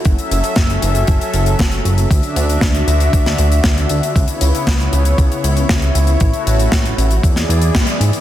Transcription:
<<
  \new Staff \with { instrumentName = "Analog synth pad" } { \time 4/4 \key fis \minor \tempo 4 = 117 << { e''1 | e''1 | cis''1~ | cis''2 d''2 | } \\ { <fis cis' a'>1 | <d d' fis'>1 | <cis b e'>1 | <a fis'>2 <e gis'>2 | } >> }
  \new Staff \with { instrumentName = "Analog synth bass" } { \clef bass \time 4/4 \key fis \minor fis,,8 fis,,8 fis,,8 fis,,8 fis,,8 fis,,8 fis,,8 fis,,8 | d,8 d,8 d,8 d,8 d,8 d,8 d,8 d,8 | cis,8 cis,8 cis,8 cis,8 cis,8 cis,8 cis,8 cis,8 | a,,8 a,,8 a,,8 a,,8 e,8 e,8 gis,8 gis,8 | }
  \new DrumStaff \with { instrumentName = "Drums" } \drummode { \time 4/4 <hh bd>16 hh16 hh16 hh16 <hh bd sn>16 hh16 hh16 hh16 <hh bd>16 hh16 hh16 hh16 <hh bd sn>16 hh16 hh16 hh16 | <hh bd>16 hh16 hh16 hh16 <hh bd sn>16 hh16 hh16 hh16 <hh bd>16 <hh sn>16 hh16 hh16 <hh bd sn>16 hh16 hh16 hh16 | <hh bd>16 hh16 hh16 hh16 <hh bd sn>16 hh16 hh16 hh16 <hh bd>16 hh16 hh16 hh16 <hh bd sn>16 hh16 hh16 hh16 | <hh bd>16 hh16 hh16 hh16 <hh bd sn>16 hh16 hh16 hh16 <hh bd>16 <hh sn>16 hh16 hh16 <hh bd sn>16 hh16 hh16 hh16 | }
>>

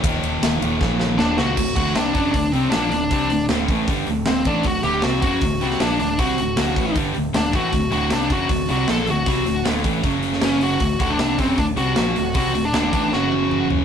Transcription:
<<
  \new Staff \with { instrumentName = "String section" } { \time 4/4 \tempo 4 = 156 << { r1 | r1 | r1 | r1 |
r1 | <d'' a''>1~ | <d'' a''>2 <cis'' cis'''>2 | <d'' a''>1~ |
<d'' a''>2 <cis'' cis'''>2 | } \\ { r1 | r1 | r1 | r1 |
r1 | fis'1~ | fis'1 | fis'1~ |
fis'1 | } >> }
  \new Staff \with { instrumentName = "Lead electric guitar" } { \time 4/4 r2. d'8 fis'8~ | fis'8 fis'8 d'8 d'8 d'8 c'8 d'8 d'8~ | d'4 r2 c'8 d'8 | fis'8 g'8 fis'8 fis'4. d'8 d'8 |
fis'2 r4 d'8 fis'8~ | fis'8 fis'8 d'8 fis'4 fis'8 a'8 fis'8~ | fis'4 r2 cis'8 fis'8~ | fis'8 fis'16 d'8. c'8 d'8 fis'4. |
fis'8. d'8. d'8 fis'4. r8 | }
  \new Staff \with { instrumentName = "Distorted electric guitar" } { \clef bass \time 4/4 <ees, bes, ees>2.~ <ees, bes, ees>8 <ees, bes, ees>8 | <d, a,>8 <d, a, d>8 <c g c'>8 <fis, cis fis>8 <d, a,>8 <c g c'>8 <bes, f bes>8 <d, a,>8 | <c g c'>8 <d, a,>8 <d, a, d>8 <a, e a>8 <g, d g>8 <d, a,>8 <d, a,>8 <a, e a>8 | <d, a,>8 <d, a, d>8 <c g c'>8 <fis, cis fis>8 <d, a,>8 <c g c'>8 <bes, f bes>8 <d, a,>8 |
<c g c'>8 <d, a,>8 <d, a, d>8 <a, e a>8 <g, d g>8 <d, a,>8 <d, a,>8 <a, e a>8 | <d, a,>8 <d, a, d>8 <c g c'>8 <fis, cis fis>8 <d, a,>8 <c g c'>8 <bes, f bes>8 <d, a,>8 | <c g c'>8 <d, a,>8 <d, a, d>8 <a, e a>8 <fis, cis fis>2 | <d, a,>8 <d, a, d>8 <c g c'>8 <fis, cis fis>8 <d, a,>8 <c g c'>8 <bes, f bes>8 <d, a,>8 |
<c g c'>8 <d, a,>8 <d, a, d>8 <a, e a>8 <fis, cis fis>2 | }
  \new Staff \with { instrumentName = "Distorted electric guitar" } { \clef bass \time 4/4 <ees, bes, ees>4. <ees, bes, ees>4. <ees, bes, ees>4 | <d, a,>8 <d, a, d>8 <c g c'>8 <fis, cis fis>8 <d, a,>8 <c g c'>8 <bes, f bes>8 <d, a,>8 | <c g c'>8 <d, a,>8 <d, a, d>8 <a, e a>8 <g, d g>8 <d, a,>8 <d, a,>8 <a, e a>8 | <d, a,>8 <d, a, d>8 <c g c'>8 <fis, cis fis>8 <d, a,>8 <c g c'>8 <bes, f bes>8 <d, a,>8 |
<c g c'>8 <d, a,>8 <d, a, d>8 <a, e a>8 <g, d g>8 <d, a,>8 <d, a,>8 <a, e a>8 | <d, a,>8 <d, a, d>8 <c g c'>8 <fis, cis fis>8 <d, a,>8 <c g c'>8 <bes, f bes>8 <d, a,>8 | <c g c'>8 <d, a,>8 <d, a, d>8 <a, e a>8 <fis, cis fis>2 | <d, a,>8 <d, a, d>8 <c g c'>8 <fis, cis fis>8 <d, a,>8 <c g c'>8 <bes, f bes>8 <d, a,>8 |
<c g c'>8 <d, a,>8 <d, a, d>8 <a, e a>8 <fis, cis fis>2 | }
  \new Staff \with { instrumentName = "Fingered electric bass" } { \clef bass \time 4/4 ees,,8 ees,,8 ees,,8 ees,,8 bes,,4 ees,,8 cis,8 | d,,8 d,,8 c,8 fis,,8 d,,8 c,8 bes,,8 d,,8 | c,8 d,,8 d,,8 a,,8 g,,8 d,,8 d,,8 a,,8 | d,,8 d,,8 c,8 fis,,8 d,,8 c,8 bes,,8 d,,8 |
c,8 d,,8 d,,8 a,,8 g,,8 d,,8 d,,8 a,,8 | d,,8 d,,8 c,8 fis,,8 d,,8 c,8 bes,,8 d,,8 | c,8 d,,8 d,,8 a,,8 fis,,2 | d,,8 d,,8 c,8 fis,,8 d,,8 c,8 bes,,8 d,,8 |
c,8 d,,8 d,,8 a,,8 fis,,2 | }
  \new DrumStaff \with { instrumentName = "Drums" } \drummode { \time 4/4 <bd cymr>8 cymr8 <cymr sn>8 cymr8 <bd sn>8 sn8 sn8 sn8 | <cymc bd>8 <hho bd>8 <hho sn>8 <hho bd>8 <hho bd>8 hho8 <hho sn>8 hho8 | <hho bd>8 hho8 <hho sn>8 <hho bd>8 <hho bd>8 hho8 <hho sn>8 <hho bd>8 | <hho bd>8 hho8 <hho sn>8 <hho bd>8 <hho bd>8 hho16 sn16 <hho sn>8 hho8 |
<hho bd>8 hho8 <hho sn>8 <hho bd>8 <hho bd>8 hho8 <hho sn>8 <hho bd>8 | <hho bd>8 hho8 <hho sn>8 <hho bd>8 <hho bd>8 hho8 <hho sn>8 hho8 | <hho bd>8 hho8 <hho sn>8 <hho bd>8 <hho bd>8 hho16 sn16 <hho sn>8 hho8 | <hho bd>8 <hho bd>8 <hho sn>8 <hho bd>8 <hho bd>8 hho8 <hho sn>8 hho8 |
<hho bd>8 hho8 <hho sn>8 <hho bd>8 sn8 tommh8 toml8 tomfh8 | }
>>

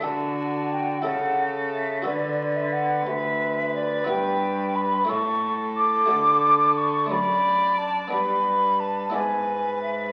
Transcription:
<<
  \new Staff \with { instrumentName = "Flute" } { \time 6/8 \key d \major \tempo 4. = 59 a''4 g''8 fis''4 e''8 | d''8. e''16 fis''8 e''4 d''8 | g''4 b''8 cis'''4 d'''8~ | d'''4 cis'''8 b''4 a''8 |
b''4 a''8 gis''4 e''8 | }
  \new Staff \with { instrumentName = "Violin" } { \time 6/8 \key d \major fis'4. a'4. | b'2.~ | b'4. a'4.~ | a'4. d''4. |
b'4. b'4. | }
  \new Staff \with { instrumentName = "Harpsichord" } { \time 6/8 \key d \major <d' a'>4. <e' a'>4. | <fis' a'>2. | <b e' b'>4. <a e' e''>4. | <a fis' d''>4. <a d' d''>4. |
<b d' d''>4. <b e' d''>4. | }
  \new Staff \with { instrumentName = "Harpsichord" } { \clef bass \time 6/8 \key d \major d4. cis4. | d4. d,4. | g,4. a,4. | d4. fis,4. |
g,4. gis,4. | }
  \new Staff \with { instrumentName = "Cello" } { \clef bass \time 6/8 \key d \major d4. cis4. | d4. d,4. | g,4. a,4. | d4. fis,4. |
g,4. gis,4. | }
>>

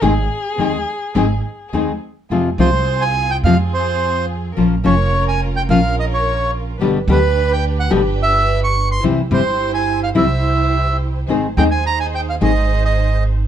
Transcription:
<<
  \new Staff \with { instrumentName = "Bandoneon" } { \time 4/4 \key aes \major \tempo 4 = 107 r1 | \key f \minor r8 c''8. aes''8 g''16 f''8 c''4 r8 | r8 des''8. aes''8 g''16 f''8 ees''16 des''8. r8 | r8 b'8. g''8 ges''8 r16 e''8. des'''8 c'''16~ |
c'''16 r16 c''8. aes''8 f''16 e''4. r8 | r8 g''16 aes''16 bes''16 aes''16 g''16 f''16 ees''8. ees''8. r8 | }
  \new Staff \with { instrumentName = "Violin" } { \time 4/4 \key aes \major aes'2. r4 | \key f \minor r1 | r1 | r1 |
r1 | r1 | }
  \new Staff \with { instrumentName = "String section" } { \time 4/4 \key aes \major <c' ees' aes'>8 r8 <c' ees' aes'>8 r8 <c' ees' aes'>8 r8 <c' ees' aes'>8 r8 | \key f \minor <c' f' aes'>8 <c' f' aes'>4. <c' f' aes'>2 | <des' f' bes'>8 <des' f' bes'>4. <des' f' bes'>2 | <d' g' b'>8 <d' g' b'>4. <d' g' b'>2 |
<e' g' c''>8 <e' g' c''>4. <e' g' c''>2 | <ees' aes' c''>8 <ees' aes' c''>4. <ees' aes' c''>2 | }
  \new Staff \with { instrumentName = "Nylon-string guitar" } { \time 4/4 \key aes \major <ees aes c' ees' aes'>8 r8 <ees aes c' ees' aes'>8 r8 <ees aes c' ees' aes'>8 r8 <ees aes c' ees' aes'>8 r8 | \key f \minor <c f aes c' f'>8 <c f aes c' f'>8 r4 <c f aes c' f'>8 r4. | <f bes des' f'>8 <f bes des' f'>8 r4 <f bes des' f'>8 r4. | <b, d g b g'>8 <b, d g b g'>8 r4 <b, d g b g'>8 r4. |
<c e g c' e'>8 <c e g c' e'>8 r4 <c e g c' e'>8 r4. | <ees aes c' ees' aes'>8 <ees aes c' ees' aes'>8 r4 <ees aes c' ees' aes'>8 r4. | }
  \new Staff \with { instrumentName = "Upright bass" } { \clef bass \time 4/4 \key aes \major aes,,8 r8 ees,8 r8 aes,,8 r8 ees,8 r8 | \key f \minor f,8 c,4. f,2 | bes,,8 f,,4. bes,,2 | g,,8 d,4. g,,2 |
c,8 g,,4. c,2 | aes,,8 ees,4. aes,,2 | }
>>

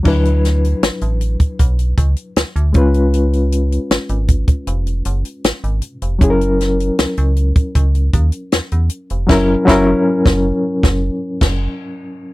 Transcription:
<<
  \new Staff \with { instrumentName = "Reed electric piano" } { \time 4/4 \key fis \mixolydian \tempo 4 = 78 <fis d' e' b'>2.~ <fis d' e' b'>8 <gis cis' eis' b'>8~ | <gis cis' eis' b'>2.~ <gis cis' eis' b'>8 r8 | <fis cis' e' gis' ais'>1 | <fis cis' e' ais'>8 <fis cis' e' ais'>8 r2. | }
  \new Staff \with { instrumentName = "FM bass" } { \clef bass \time 4/4 \key fis \mixolydian d,4 a,,16 a,,8 r16 b,,8 cis,16 r16 d,16 d,16 cis,8~ | cis,4 gis,,16 gis,,8 r16 eis,,8 fis,,16 r16 gis,,16 gis,,16 r16 eis,,16 | fis,,4 cis,16 cis,8 r16 cis,8 dis,16 r16 e,16 e,16 r16 eis,,16 | fis,,8 fis,,8 r16 fis,,8 r16 fis,,8 r16 fis,,8 r8. | }
  \new DrumStaff \with { instrumentName = "Drums" } \drummode { \time 4/4 <cymc bd>16 hh16 <hh sn>16 hh16 <hh sn>16 hh16 hh16 <hh bd>16 <hh bd>16 hh16 <hh bd>16 hh16 <hh sn>16 hh16 <hh bd>16 hh16 | hh16 hh16 hh16 hh16 <hh sn>16 hh16 <hh bd>16 <hh bd>16 hh16 hh16 hh16 hh16 <hh sn>16 hh16 hh16 hh16 | <hh bd>16 hh16 <hh sn>16 hh16 <hh sn>16 hh16 hh16 <hh bd>16 <hh bd>16 hh16 <hh bd>16 hh16 <hh sn>16 hh16 hh16 hh16 | <cymc bd sn>8 <bd sn>8 r16 <bd sn>8. <bd sn>8. <cymc bd sn>16 r4 | }
>>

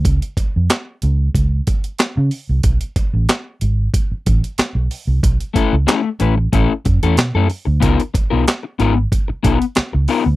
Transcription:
<<
  \new Staff \with { instrumentName = "Clean electric guitar" } { \time 4/4 \key ces \lydian \tempo 4 = 93 r1 | r1 | r8 <a des' fes' a'>16 r16 <a des' fes' a'>16 r16 <a des' fes' ces''>16 r16 <a des' fes' a'>16 r8 <a des' fes' a'>16 r16 <a des' fes' a'>16 r8 | <ces' ees' f' bes'>16 r8 <ces' ees' f' bes'>16 r8 <ces' ees' f' bes'>16 r8. <ces' ees' f' bes'>16 r8. <ces' ees' f' bes'>16 r16 | }
  \new Staff \with { instrumentName = "Fingered electric bass" } { \clef bass \time 4/4 \key ces \lydian des,16 r8 f,16 r8 des,8 des,8 r8. des16 r16 c,16 | ces,16 r8 a,,16 r8 aes,,8 r8 a,,16 r8 ces,16 r16 c,16 | ces,16 r8 des,16 r8 a,,8 a,,16 r16 ges,16 fes,16 ces16 ges,16 r16 d,16 | des,16 r8 ces,16 r8 aes,,8 r8 ces,16 r8 des,16 r16 d,16 | }
  \new DrumStaff \with { instrumentName = "Drums" } \drummode { \time 4/4 <hh bd>16 hh16 <hh bd>8 <hc hh sn>8 hh8 <hh bd>8 <hh bd>16 hh16 <hc hh sn>8 hho8 | <hh bd>16 hh16 <hh bd>8 <hc hh sn>8 hh8 <hh bd>8 <hh bd>16 hh16 <hc hh sn>8 hho8 | <hh bd>16 hh16 <hh bd>8 <hc hh sn>8 hh8 <hh bd>8 <hh bd>16 hh16 <hc hh sn>8 hho8 | <hh bd>16 hh16 <hh bd>8 <hc hh sn>8 hh8 <hh bd>8 <hh bd>16 hh16 <hc hh sn>8 hho8 | }
>>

